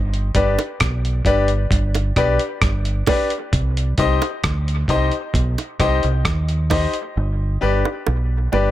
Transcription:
Already playing: G1
0.14 closed hi-hat
0.35 G1 D4 G4 B4 D5, kick, closed hi-hat
0.59 closed hi-hat, high bongo
0.80 B1, kick, cross-stick, closed hi-hat
1.05 closed hi-hat
1.25 G1 D4 G4 B4 D5, kick, closed hi-hat
1.48 closed hi-hat
1.71 G1, kick, closed hi-hat
1.95 closed hi-hat, high bongo
2.16 B1 D4 G4 B4 D5, kick, cross-stick, closed hi-hat
2.39 closed hi-hat
2.62 G1, kick, cross-stick, closed hi-hat
2.85 closed hi-hat
3.07 D4 G4 B4 D5, kick, open hi-hat, high bongo, low bongo
3.30 closed hi-hat
3.53 C2, kick, closed hi-hat
3.77 closed hi-hat
3.98 C2 D#4 G4 C5 D#5, kick, closed hi-hat
4.22 closed hi-hat, high bongo
4.44 D2, kick, cross-stick, closed hi-hat
4.68 closed hi-hat
4.88 C2 D#4 G4 C5 D#5, kick, closed hi-hat
5.12 closed hi-hat
5.34 B1, kick, closed hi-hat
5.58 closed hi-hat, high bongo
5.80 C2 D#4 G4 C5 D#5, kick, cross-stick, closed hi-hat
6.03 C2, closed hi-hat
6.25 D#2, kick, cross-stick, closed hi-hat
6.49 closed hi-hat
6.70 D#4 G4 C5 D#5, kick, open hi-hat, high bongo, low bongo
6.94 closed hi-hat
7.17 G1
7.61 G1 D4 G4 B4 D5
7.85 high bongo
8.07 B1, high bongo
8.52 G1 D4 G4 B4 D5, low bongo

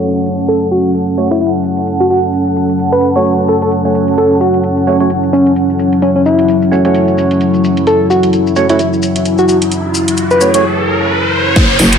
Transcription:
Already playing: F#3 A3 C#4 F#4 A4 C#5 F#5 A5, downlifter
0.02 closed hi-hat, maracas
0.15 maracas
0.26 maracas
0.39 closed hi-hat, maracas
0.48 A4, closed hi-hat, maracas
0.71 F#4, maracas
0.85 closed hi-hat, maracas
0.94 closed hi-hat, maracas
1.07 maracas
1.17 A3 C#4 F#4 C#5, maracas
1.30 A3 C#4 E4 F#4 C#5, closed hi-hat, maracas
1.41 E4, closed hi-hat, maracas
1.54 maracas
1.63 maracas
1.77 closed hi-hat, maracas
1.87 closed hi-hat, maracas
2.00 F#4, maracas
2.10 F#4, maracas
2.23 closed hi-hat, maracas
2.33 closed hi-hat, maracas
2.47 maracas
2.56 maracas
2.69 closed hi-hat, maracas
2.79 closed hi-hat, maracas
2.92 B4, maracas
3.02 maracas
3.16 A3 C#4 F#4 C#5, closed hi-hat, maracas
3.25 closed hi-hat, maracas
3.38 maracas
3.48 A4, maracas
3.62 A4, closed hi-hat, maracas
3.72 closed hi-hat, maracas
3.85 A3 C#4 F#4 C#5, maracas
3.95 maracas
4.08 closed hi-hat, maracas
4.18 E4 A4, closed hi-hat, maracas
4.40 F#4, maracas
4.54 closed hi-hat, maracas
4.63 closed hi-hat, maracas
4.77 maracas
4.87 A3 C#4 F#4 C#5, maracas
5.00 A3 C#4 F#4 C#5, closed hi-hat, maracas
5.10 closed hi-hat, maracas
5.23 maracas
5.33 C#4, maracas
5.46 closed hi-hat, maracas
5.56 closed hi-hat, maracas
5.69 maracas
5.79 maracas
5.92 closed hi-hat, maracas
6.02 C#4, closed hi-hat, maracas
6.16 C#4
6.26 E4, maracas
6.39 closed hi-hat, maracas
6.48 closed hi-hat, maracas
6.62 maracas
6.71 A3 C#4 F#4 C#5, maracas
6.85 A3 C#4 F#4 C#5, closed hi-hat, maracas
6.94 closed hi-hat, maracas
7.08 maracas
7.18 maracas
7.31 closed hi-hat, maracas
7.41 closed hi-hat, maracas
7.54 maracas
7.64 maracas
7.77 closed hi-hat, maracas
7.87 A4, closed hi-hat, riser, maracas
8.10 F#4, maracas
8.23 closed hi-hat, maracas
8.33 closed hi-hat, maracas
8.47 maracas
8.56 A3 C#4 F#4 C#5, maracas
8.69 A3 C#4 E4 F#4 C#5, closed hi-hat, maracas
8.79 E4, closed hi-hat, maracas
8.93 maracas
9.02 maracas
9.16 closed hi-hat, maracas
9.25 closed hi-hat, maracas
9.38 F#4, maracas
9.48 F#4, maracas
9.62 closed hi-hat, maracas
9.72 closed hi-hat, maracas
9.94 maracas
10.08 closed hi-hat, maracas
10.17 closed hi-hat, maracas
10.31 B4, maracas
10.41 A3 C#4 F#4 C#5, maracas
10.54 A3 C#4 F#4 C#5, closed hi-hat, maracas
11.56 F#1 A3 C#4 F#4, kick, closed hi-hat, crash, downlifter
11.79 F#1, open hi-hat
11.93 finger snap, closed hi-hat

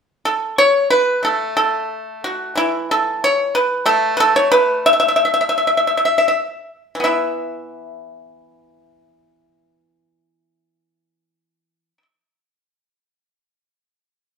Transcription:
0.25 A4
0.58 C#5
0.90 B4
1.23 A3 A4
1.57 A4
2.24 F#4
2.56 E3 E4
2.91 A4
3.24 C#5
3.55 B4
3.86 A3 A4
4.17 A4 B4
4.36 C#5
4.52 B4
4.86 E5
4.93 E5
5.00 E5
5.08 E5
5.16 E5
5.25 E5
5.34 E5
5.41 E5
5.49 E5
5.58 E5
5.67 E5
5.77 E5
5.87 E5
5.97 E5
6.05 E5
6.18 E5
6.28 E5
6.95 E3
7.00 B3 E5
7.05 E4

